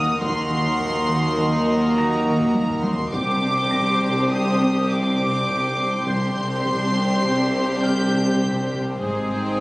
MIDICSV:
0, 0, Header, 1, 14, 480
1, 0, Start_track
1, 0, Tempo, 584795
1, 174, Time_signature, 5, 2, 24, 8
1, 4974, Tempo, 593472
1, 7839, End_track
2, 0, Start_track
2, 0, Title_t, "Grand piano"
2, 0, Program_c, 0, 0
2, 0, Control_c, 0, 64, 127
2, 1627, Note_on_c, 0, 82, 41
2, 1627, Note_on_c, 0, 94, 43
2, 2580, Control_c, 0, 64, 0
2, 2691, Control_c, 0, 64, 127
2, 3022, Note_off_c, 0, 82, 0
2, 3022, Note_off_c, 0, 94, 0
2, 3045, Note_on_c, 0, 94, 41
2, 4461, Note_off_c, 0, 94, 0
2, 4984, Note_on_c, 0, 91, 50
2, 6389, Note_off_c, 0, 91, 0
2, 6408, Note_on_c, 0, 89, 48
2, 7392, Control_c, 0, 64, 0
2, 7499, Control_c, 0, 64, 127
2, 7821, Note_off_c, 0, 89, 0
2, 7839, End_track
3, 0, Start_track
3, 0, Title_t, "Violin section"
3, 0, Program_c, 1, 48
3, 0, Note_on_c, 1, 78, 43
3, 0, Note_on_c, 1, 82, 39
3, 0, Note_on_c, 1, 89, 43
3, 2289, Note_off_c, 1, 82, 0
3, 2290, Note_off_c, 1, 89, 0
3, 2299, Note_off_c, 1, 78, 0
3, 2570, Note_on_c, 1, 91, 47
3, 3046, Note_on_c, 1, 96, 51
3, 6099, Note_off_c, 1, 96, 0
3, 6099, Note_on_c, 1, 95, 51
3, 7103, Note_off_c, 1, 95, 0
3, 7106, Note_off_c, 1, 91, 0
3, 7366, Note_on_c, 1, 96, 40
3, 7839, Note_off_c, 1, 96, 0
3, 7839, End_track
4, 0, Start_track
4, 0, Title_t, "Violin section"
4, 0, Program_c, 2, 48
4, 0, Note_on_c, 2, 87, 89
4, 172, Note_off_c, 2, 87, 0
4, 174, Note_on_c, 2, 84, 94
4, 1580, Note_off_c, 2, 84, 0
4, 1612, Note_on_c, 2, 82, 73
4, 2318, Note_on_c, 2, 84, 82
4, 2324, Note_off_c, 2, 82, 0
4, 2560, Note_on_c, 2, 86, 85
4, 2561, Note_off_c, 2, 84, 0
4, 3528, Note_off_c, 2, 86, 0
4, 3531, Note_on_c, 2, 87, 86
4, 4002, Note_off_c, 2, 87, 0
4, 4009, Note_on_c, 2, 86, 94
4, 4972, Note_on_c, 2, 84, 99
4, 4976, Note_off_c, 2, 86, 0
4, 6386, Note_off_c, 2, 84, 0
4, 6423, Note_on_c, 2, 91, 84
4, 7138, Note_off_c, 2, 91, 0
4, 7610, Note_on_c, 2, 79, 67
4, 7839, Note_off_c, 2, 79, 0
4, 7839, End_track
5, 0, Start_track
5, 0, Title_t, "Glass harmonica"
5, 0, Program_c, 3, 92
5, 0, Note_on_c, 3, 63, 36
5, 0, Note_on_c, 3, 70, 37
5, 0, Note_on_c, 3, 78, 39
5, 140, Note_off_c, 3, 70, 0
5, 164, Note_off_c, 3, 63, 0
5, 167, Note_off_c, 3, 78, 0
5, 174, Note_on_c, 3, 63, 42
5, 174, Note_on_c, 3, 70, 42
5, 176, Note_on_c, 3, 78, 40
5, 2530, Note_off_c, 3, 63, 0
5, 2530, Note_off_c, 3, 70, 0
5, 2531, Note_off_c, 3, 78, 0
5, 2564, Note_on_c, 3, 72, 47
5, 2566, Note_on_c, 3, 79, 47
5, 2567, Note_on_c, 3, 67, 48
5, 4968, Note_off_c, 3, 72, 0
5, 4974, Note_off_c, 3, 67, 0
5, 4978, Note_off_c, 3, 79, 0
5, 4978, Note_on_c, 3, 72, 47
5, 4984, Note_on_c, 3, 67, 46
5, 4986, Note_on_c, 3, 79, 47
5, 7344, Note_off_c, 3, 72, 0
5, 7346, Note_off_c, 3, 67, 0
5, 7348, Note_off_c, 3, 79, 0
5, 7383, Note_on_c, 3, 72, 39
5, 7384, Note_on_c, 3, 75, 40
5, 7389, Note_on_c, 3, 68, 39
5, 7839, Note_off_c, 3, 68, 0
5, 7839, Note_off_c, 3, 72, 0
5, 7839, Note_off_c, 3, 75, 0
5, 7839, End_track
6, 0, Start_track
6, 0, Title_t, "Violin section"
6, 0, Program_c, 4, 48
6, 0, Note_on_c, 4, 66, 55
6, 0, Note_on_c, 4, 70, 55
6, 141, Note_off_c, 4, 66, 0
6, 141, Note_off_c, 4, 70, 0
6, 182, Note_on_c, 4, 66, 63
6, 184, Note_on_c, 4, 70, 58
6, 2534, Note_off_c, 4, 66, 0
6, 2535, Note_off_c, 4, 70, 0
6, 2573, Note_on_c, 4, 72, 65
6, 2574, Note_on_c, 4, 67, 62
6, 4949, Note_off_c, 4, 72, 0
6, 4950, Note_off_c, 4, 67, 0
6, 4977, Note_on_c, 4, 67, 61
6, 4977, Note_on_c, 4, 72, 60
6, 7343, Note_off_c, 4, 67, 0
6, 7343, Note_off_c, 4, 72, 0
6, 7365, Note_on_c, 4, 68, 54
6, 7371, Note_on_c, 4, 72, 51
6, 7839, Note_off_c, 4, 68, 0
6, 7839, Note_off_c, 4, 72, 0
6, 7839, End_track
7, 0, Start_track
7, 0, Title_t, "French horn section"
7, 0, Program_c, 5, 60
7, 180, Note_on_c, 5, 58, 64
7, 185, Note_on_c, 5, 70, 65
7, 2533, Note_off_c, 5, 58, 0
7, 2536, Note_off_c, 5, 70, 0
7, 2571, Note_on_c, 5, 60, 73
7, 2573, Note_on_c, 5, 72, 76
7, 4948, Note_off_c, 5, 60, 0
7, 4949, Note_off_c, 5, 72, 0
7, 4976, Note_on_c, 5, 72, 74
7, 4977, Note_on_c, 5, 60, 69
7, 7230, Note_off_c, 5, 60, 0
7, 7230, Note_off_c, 5, 72, 0
7, 7368, Note_on_c, 5, 72, 55
7, 7372, Note_on_c, 5, 60, 57
7, 7839, Note_off_c, 5, 60, 0
7, 7839, Note_off_c, 5, 72, 0
7, 7839, End_track
8, 0, Start_track
8, 0, Title_t, "Viola section"
8, 0, Program_c, 6, 48
8, 0, Note_on_c, 6, 58, 58
8, 0, Note_on_c, 6, 63, 58
8, 144, Note_off_c, 6, 58, 0
8, 144, Note_off_c, 6, 63, 0
8, 178, Note_on_c, 6, 63, 64
8, 179, Note_on_c, 6, 58, 63
8, 2532, Note_off_c, 6, 63, 0
8, 2533, Note_off_c, 6, 58, 0
8, 2568, Note_on_c, 6, 60, 65
8, 2568, Note_on_c, 6, 62, 67
8, 4946, Note_off_c, 6, 60, 0
8, 4946, Note_off_c, 6, 62, 0
8, 4985, Note_on_c, 6, 60, 65
8, 4985, Note_on_c, 6, 62, 62
8, 7347, Note_off_c, 6, 60, 0
8, 7347, Note_off_c, 6, 62, 0
8, 7376, Note_on_c, 6, 60, 56
8, 7376, Note_on_c, 6, 63, 53
8, 7839, Note_off_c, 6, 60, 0
8, 7839, Note_off_c, 6, 63, 0
8, 7839, End_track
9, 0, Start_track
9, 0, Title_t, "Trombone section"
9, 0, Program_c, 7, 61
9, 173, Note_on_c, 7, 51, 65
9, 173, Note_on_c, 7, 54, 64
9, 2530, Note_off_c, 7, 51, 0
9, 2530, Note_off_c, 7, 54, 0
9, 2560, Note_on_c, 7, 55, 71
9, 2564, Note_on_c, 7, 48, 73
9, 4942, Note_off_c, 7, 55, 0
9, 4945, Note_off_c, 7, 48, 0
9, 4978, Note_on_c, 7, 48, 73
9, 4981, Note_on_c, 7, 55, 73
9, 7236, Note_off_c, 7, 48, 0
9, 7236, Note_off_c, 7, 55, 0
9, 7374, Note_on_c, 7, 51, 57
9, 7378, Note_on_c, 7, 56, 52
9, 7839, Note_off_c, 7, 51, 0
9, 7839, Note_off_c, 7, 56, 0
9, 7839, End_track
10, 0, Start_track
10, 0, Title_t, "Analog synth bass"
10, 0, Program_c, 8, 38
10, 172, Note_on_c, 8, 51, 83
10, 316, Note_off_c, 8, 51, 0
10, 412, Note_on_c, 8, 51, 53
10, 556, Note_off_c, 8, 51, 0
10, 655, Note_on_c, 8, 51, 61
10, 798, Note_off_c, 8, 51, 0
10, 894, Note_on_c, 8, 51, 58
10, 1037, Note_off_c, 8, 51, 0
10, 1133, Note_on_c, 8, 51, 79
10, 1276, Note_off_c, 8, 51, 0
10, 1375, Note_on_c, 8, 63, 56
10, 1517, Note_off_c, 8, 63, 0
10, 1613, Note_on_c, 8, 51, 58
10, 1754, Note_off_c, 8, 51, 0
10, 1849, Note_on_c, 8, 51, 80
10, 1990, Note_off_c, 8, 51, 0
10, 2083, Note_on_c, 8, 51, 60
10, 2226, Note_off_c, 8, 51, 0
10, 2321, Note_on_c, 8, 51, 58
10, 2466, Note_off_c, 8, 51, 0
10, 2569, Note_on_c, 8, 48, 79
10, 2712, Note_off_c, 8, 48, 0
10, 2812, Note_on_c, 8, 48, 57
10, 2954, Note_off_c, 8, 48, 0
10, 3051, Note_on_c, 8, 48, 57
10, 3195, Note_off_c, 8, 48, 0
10, 3299, Note_on_c, 8, 48, 58
10, 3441, Note_off_c, 8, 48, 0
10, 3538, Note_on_c, 8, 48, 81
10, 3680, Note_off_c, 8, 48, 0
10, 3779, Note_on_c, 8, 60, 52
10, 3921, Note_off_c, 8, 60, 0
10, 4019, Note_on_c, 8, 48, 52
10, 4161, Note_off_c, 8, 48, 0
10, 4261, Note_on_c, 8, 48, 77
10, 4403, Note_off_c, 8, 48, 0
10, 4501, Note_on_c, 8, 48, 58
10, 4644, Note_off_c, 8, 48, 0
10, 4738, Note_on_c, 8, 48, 55
10, 4882, Note_off_c, 8, 48, 0
10, 4978, Note_on_c, 8, 48, 76
10, 5121, Note_off_c, 8, 48, 0
10, 5220, Note_on_c, 8, 48, 52
10, 5362, Note_off_c, 8, 48, 0
10, 5458, Note_on_c, 8, 48, 58
10, 5600, Note_off_c, 8, 48, 0
10, 5696, Note_on_c, 8, 48, 55
10, 5838, Note_off_c, 8, 48, 0
10, 5929, Note_on_c, 8, 48, 77
10, 6075, Note_off_c, 8, 48, 0
10, 6173, Note_on_c, 8, 60, 53
10, 6320, Note_off_c, 8, 60, 0
10, 6419, Note_on_c, 8, 48, 53
10, 6563, Note_off_c, 8, 48, 0
10, 6657, Note_on_c, 8, 48, 69
10, 6801, Note_off_c, 8, 48, 0
10, 6905, Note_on_c, 8, 48, 52
10, 7046, Note_off_c, 8, 48, 0
10, 7139, Note_on_c, 8, 48, 55
10, 7282, Note_off_c, 8, 48, 0
10, 7380, Note_on_c, 8, 44, 73
10, 7523, Note_off_c, 8, 44, 0
10, 7621, Note_on_c, 8, 44, 49
10, 7764, Note_off_c, 8, 44, 0
10, 7839, End_track
11, 0, Start_track
11, 0, Title_t, "Cello section"
11, 0, Program_c, 10, 48
11, 0, Note_on_c, 10, 39, 58
11, 168, Note_off_c, 10, 39, 0
11, 178, Note_on_c, 10, 39, 64
11, 2532, Note_off_c, 10, 39, 0
11, 2570, Note_on_c, 10, 36, 69
11, 4947, Note_off_c, 10, 36, 0
11, 4974, Note_on_c, 10, 36, 67
11, 7341, Note_off_c, 10, 36, 0
11, 7372, Note_on_c, 10, 44, 56
11, 7839, Note_off_c, 10, 44, 0
11, 7839, End_track
12, 0, Start_track
12, 0, Title_t, "Double bass section"
12, 0, Program_c, 11, 48
12, 0, Note_on_c, 11, 39, 56
12, 171, Note_off_c, 11, 39, 0
12, 181, Note_on_c, 11, 39, 60
12, 2534, Note_off_c, 11, 39, 0
12, 2564, Note_on_c, 11, 36, 70
12, 4944, Note_off_c, 11, 36, 0
12, 4982, Note_on_c, 11, 36, 68
12, 7345, Note_off_c, 11, 36, 0
12, 7377, Note_on_c, 11, 32, 59
12, 7839, Note_off_c, 11, 32, 0
12, 7839, End_track
13, 0, Start_track
13, 0, Title_t, "Sub bass"
13, 0, Program_c, 12, 38
13, 0, Note_on_c, 12, 39, 74
13, 163, Note_off_c, 12, 39, 0
13, 168, Note_on_c, 12, 39, 72
13, 2561, Note_on_c, 12, 36, 72
13, 2574, Note_off_c, 12, 39, 0
13, 4976, Note_off_c, 12, 36, 0
13, 4981, Note_on_c, 12, 36, 68
13, 7364, Note_on_c, 12, 32, 68
13, 7376, Note_off_c, 12, 36, 0
13, 7839, Note_off_c, 12, 32, 0
13, 7839, End_track
14, 0, Start_track
14, 0, Title_t, "Taiko and cinematic ensemble drums"
14, 177, Note_on_c, 9, 41, 85
14, 259, Note_off_c, 9, 41, 0
14, 653, Note_on_c, 9, 41, 71
14, 735, Note_off_c, 9, 41, 0
14, 1967, Note_on_c, 9, 45, 78
14, 2049, Note_off_c, 9, 45, 0
14, 2088, Note_on_c, 9, 48, 79
14, 2170, Note_off_c, 9, 48, 0
14, 2208, Note_on_c, 9, 45, 83
14, 2290, Note_off_c, 9, 45, 0
14, 2327, Note_on_c, 9, 48, 81
14, 2409, Note_off_c, 9, 48, 0
14, 2446, Note_on_c, 9, 43, 80
14, 2528, Note_off_c, 9, 43, 0
14, 2566, Note_on_c, 9, 41, 90
14, 2649, Note_off_c, 9, 41, 0
14, 3048, Note_on_c, 9, 41, 70
14, 3130, Note_off_c, 9, 41, 0
14, 4497, Note_on_c, 9, 41, 66
14, 4579, Note_off_c, 9, 41, 0
14, 4979, Note_on_c, 9, 41, 81
14, 5060, Note_off_c, 9, 41, 0
14, 5456, Note_on_c, 9, 41, 68
14, 5537, Note_off_c, 9, 41, 0
14, 6902, Note_on_c, 9, 41, 64
14, 6983, Note_off_c, 9, 41, 0
14, 7373, Note_on_c, 9, 41, 56
14, 7454, Note_off_c, 9, 41, 0
14, 7839, End_track
0, 0, End_of_file